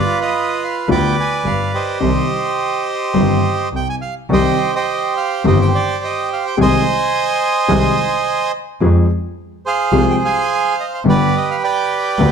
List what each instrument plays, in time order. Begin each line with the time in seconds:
Already playing: bandoneon F4 B4 D5
0.21 bandoneon B4 D#5
0.64 bandoneon F5
0.88 grand piano D2 D3 G3 B3 F4, double bass D2, bandoneon B4 D5 G5
1.20 bandoneon G#5
1.44 grand piano G1 G2, double bass G1, bandoneon F5
1.74 bandoneon G4 C5 D#5
2.00 grand piano C2 C3 D#3 G3 C4 G4, double bass C2
3.14 grand piano G1 G2 D#3 G3 C4 G4, double bass G1
3.72 grand piano C2 C3, double bass C2, bandoneon G5
3.89 bandoneon G#5
4.02 bandoneon F5
4.30 grand piano C2 C3 D#3 G3 C4 G4, double bass C2, bandoneon G4 D#5
4.34 bandoneon C5
4.75 bandoneon G4 C5 D#5
5.17 bandoneon F5
5.44 grand piano G1 G2 D#3 G3 C4 G4, double bass G1, bandoneon G4 C5 D#5
5.62 bandoneon G5
5.75 bandoneon D5
6.04 bandoneon D#5
6.33 bandoneon F5
6.47 bandoneon G5
6.57 grand piano C2 C3 D#3 G#3 C4 G#4, double bass C2, bandoneon G#5
6.62 bandoneon C5 D#5
7.68 grand piano C2 C3 D#3 G#3 C4 G#4, double bass C2
8.81 double bass F2, grand piano F2 F3 G#3 C4 G#4
9.66 bandoneon G#4 C5 F5
9.92 double bass C2, grand piano C2 C3 F3 G#3 C4 G#4
10.10 bandoneon G5
10.25 bandoneon C5 F5 G#5
10.80 bandoneon D#5
10.94 bandoneon F5
11.05 grand piano G1 G2 D3 G3 B3 G4, double bass G1, bandoneon G4
11.09 bandoneon B4 D5
11.37 bandoneon D#5
11.51 bandoneon F5
11.64 bandoneon B4 D5 G5
12.18 double bass D2, grand piano D2 D3 G3 B3 G4